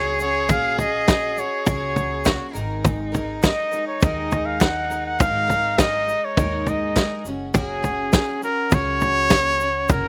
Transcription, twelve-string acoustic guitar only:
Already playing: A#3 C#4 F#4 G#4
0.20 C#4 F#4 G#4
0.50 A#3 C#4 F#4 G#4
0.79 C#4 F#4 G#4
1.09 C#4 F#4 G#4
1.37 C#4 F#4 G#4
1.66 A#3 C#4 F#4 G#4
2.24 A#3 C#4 F#4 G#4
2.53 G#2 D#3 G#3 D#4 G#4 A#4
3.12 G#3 D#4 G#4 A#4
3.41 G#3 D#4 G#4
3.46 A#4
3.71 G#3 D#4 G#4 A#4
4.00 G#2 D#3 G#3 D#4 G#4 A#4
4.60 G#3 D#4 G#4 A#4
4.90 G#3 D#4 G#4 A#4
5.19 G#2 D#3 G#3 D#4 G#4 A#4
5.48 G#3 D#4 G#4 A#4
5.78 G#3 D#4 G#4 A#4
6.37 G#2 D#3 G#3 D#4 G#4 A#4
6.95 G#3 D#4 G#4 A#4
7.25 C#4 F#4 G#4
7.54 F#3 A#3 C#4 F#4 G#4
7.83 C#4 F#4 G#4
8.12 A#3 C#4 F#4 G#4
8.42 C#4 F#4 G#4
8.70 F#3 A#3 C#4 F#4 G#4
9.30 A#3 C#4 G#4
9.59 C#4 F#4 G#4
9.89 F#3 A#3 C#4 F#4 G#4

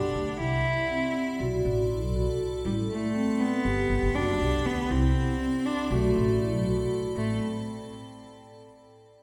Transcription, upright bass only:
0.15 D2
0.40 C2
1.40 B1
1.65 A1
2.02 B1
2.65 A1
3.65 G1
3.90 G1
4.03 G1
4.15 F#1
4.41 B1
4.66 D2
4.91 C2
5.91 B1
6.15 A1
6.53 B1
7.15 A1

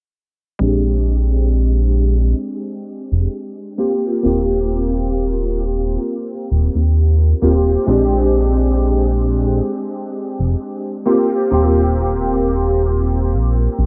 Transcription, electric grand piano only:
0.59 G#3 C4 D4 G4
3.78 A#3 C4 F4 G4
4.23 A#3 C4 F4 G4
7.42 A#3 C4 F4 G4
7.86 G#3 C4 D4 G4
11.05 A#3 C4 F4 G4
11.51 A#3 C4 F4 G4

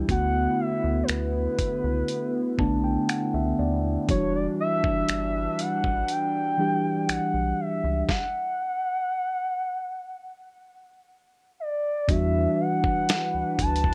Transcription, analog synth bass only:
0.09 D2
0.84 D2
1.09 D2
1.84 C#2
2.59 B1
3.34 C#2
3.59 D#2
4.09 E1
4.84 F#1
5.09 G1
5.84 A1
7.09 B1
7.34 B1
7.84 C#2
12.09 E2
13.34 D2
13.59 D2

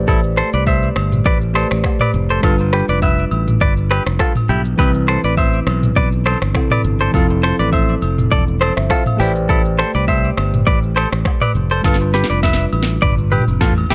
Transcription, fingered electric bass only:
Already playing: A1
0.54 C2
0.96 G1
1.26 A1
1.71 A1
2.14 F1
2.43 G1
2.89 F1
3.31 A1
3.61 G1
4.06 F1
4.49 B1
4.79 C2
5.24 A1
5.67 B1
5.96 B1
6.42 G1
6.84 G1
7.14 F1
7.59 A1
8.02 F1
8.32 E1
8.77 G1
9.20 A1
9.95 C2
10.38 G1
10.67 A1
11.13 A1
11.55 F1
11.84 G1
12.30 F1
12.73 A1
13.02 G1
13.48 F1
13.61 A1
13.91 B1

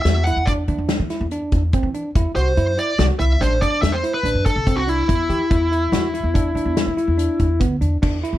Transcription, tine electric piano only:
0.06 F#4
0.27 E4
0.48 D4
0.68 D4
1.10 E4
1.32 D4
1.74 C4
1.95 D4
2.16 E4
2.37 F#4
2.57 E4
2.77 E4
2.99 F#4
3.20 E4
3.41 D4
3.62 D4
4.04 E4
4.25 D4
4.67 C4
4.87 D4
5.08 E4
5.30 G4
5.51 E4
5.72 E4
5.93 F#4
6.14 E4
6.34 D4
6.55 D4
6.97 E4
7.18 D4
7.60 B3
7.81 D4
8.02 D4
8.23 E4

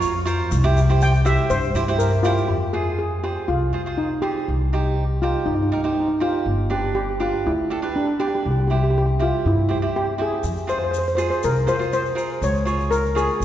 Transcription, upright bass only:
Already playing: F2
0.52 C2
1.50 G2
1.75 G2
2.49 F2
3.49 C2
4.48 C2
5.46 G2
6.46 G1
7.46 D2
8.45 C2
9.45 G2
10.43 F2
11.44 C2
12.42 C#2
13.40 G#1

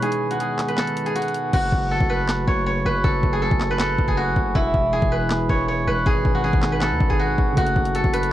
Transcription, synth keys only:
0.00 B2 G#3
0.04 D#4 G#4
7.52 C#3 A3
7.58 F#4 A4

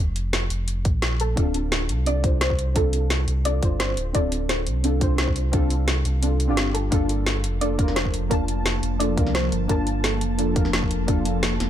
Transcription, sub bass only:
Already playing: F1
0.50 F1
0.85 A#1
1.37 D1
1.89 C2
3.28 C2
3.63 G1
3.97 D1
4.15 D1
4.67 C2
6.05 C2
6.49 G1
6.92 G1
7.44 F1
8.83 F1
9.17 C2
9.52 G1
9.69 G1
10.21 F1
11.60 F1

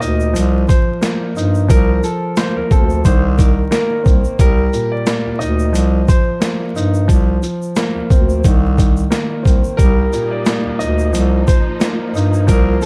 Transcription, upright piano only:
0.00 D#5
0.68 C5
1.70 A#4
2.04 A4
2.37 C5
2.57 A#4
2.71 A4
3.05 C5
3.38 A#4
3.73 A#4
4.41 A#4
4.92 D5
5.39 D#5
6.09 C5
9.77 A#4
10.31 D5
10.79 D#5
11.47 C5
12.49 A#4
12.82 A4

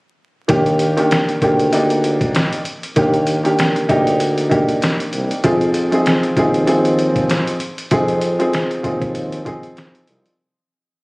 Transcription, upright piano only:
0.48 D#3 A#3 D4 G4
0.97 D#3 A#3 D4 G4
1.42 D#3 A#3 D4 G4
1.72 A#3 D4 D#4 G4
2.96 D#3 A#3 D4 G4
3.44 D#3 A#3 D4 G4
3.89 A#3 D4 D#4 G4
4.50 A#3 D4 D#4 G4
5.44 F3 C4 D#4 G#4
5.91 F3 C4 D#4 G#4
6.37 F3 C4 D#4 G#4
6.67 F3 C4 D#4 G#4
7.91 F3 C4 D#4 G#4
8.39 F3 C4 D#4 G#4
8.83 F3 C4 D#4 G#4
9.45 F3 C4 D#4 G#4

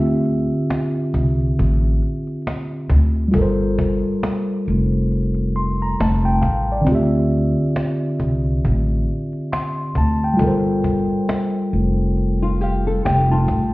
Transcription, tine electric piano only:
Already playing: D3 C4 F4 G4 E5
3.28 G3 F4
3.35 A4 A#4
3.42 C5
5.56 C6
5.82 A#5
6.01 A5
6.25 G5
6.42 F5
6.72 D5
6.81 D3 C4
6.88 F4 G4
6.95 E5
9.52 C6
9.98 A5
10.24 G5
10.34 G3 F4
10.41 A4 A#4
10.47 C5
12.63 F5
13.05 G5
13.32 A5

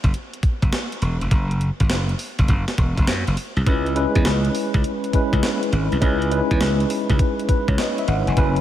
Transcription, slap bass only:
0.04 F#1
0.43 muted slap bass stroke
0.62 F#1
1.02 E1
1.21 F1
1.31 F#1
1.80 G#1
1.90 F#1
2.39 F#1
2.49 F#1
2.78 E1
2.98 F#1
3.07 F#2
3.27 F#1
3.56 C2
3.67 C#2
4.15 E2
4.25 C#2
4.74 C#2
5.13 muted slap bass stroke
5.33 C#2
5.72 G#1
5.92 C2
6.02 C#2
6.51 E2
6.61 C#2
7.10 C#2
7.49 muted slap bass stroke
7.68 C#2
8.08 G#1
8.27 F1
8.37 F#1

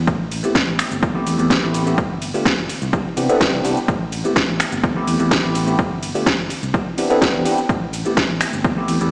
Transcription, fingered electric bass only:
0.07 A1
0.68 A1
0.91 G1
1.03 E2
1.27 E2
1.39 E2
1.63 A1
1.98 G1
2.58 G1
2.69 muted fingered electric bass stroke
2.82 C2
2.93 C3
3.17 C3
3.29 muted fingered electric bass stroke
3.41 C2
3.53 C2
3.64 C2
3.88 A1
4.48 A1
4.72 G1
4.84 E2
5.07 E2
5.20 E2
5.44 A1
5.79 G1
6.39 G1
6.50 muted fingered electric bass stroke
6.63 C2
7.34 E2
7.69 A1
8.29 A1
8.53 G1
8.64 E2
8.88 E2
9.01 E2

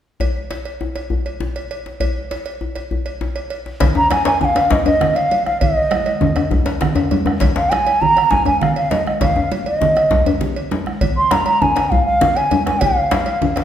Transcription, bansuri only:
3.97 A#5
4.12 G#5
4.27 G#5
4.41 F5 G#5
4.72 D#5
4.87 D#5
5.16 F5
5.46 F5
5.61 D#5
7.57 F5
7.71 G#5
8.01 A#5
8.31 G#5
8.46 G#5
8.61 F5
8.77 F5
8.91 D#5
9.07 D#5
9.22 F5
9.67 D#5
11.17 C6
11.32 A#5
11.48 A#5
11.62 G#5
11.91 F5
12.06 F5
12.37 G#5
12.67 G#5
12.82 F5

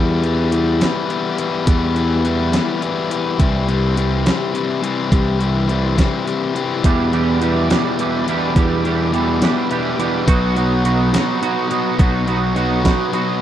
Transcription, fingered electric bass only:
Already playing: E2
1.67 E2
3.40 C2
5.12 C2
6.84 E2
8.56 E2
10.28 B1
12.00 B1

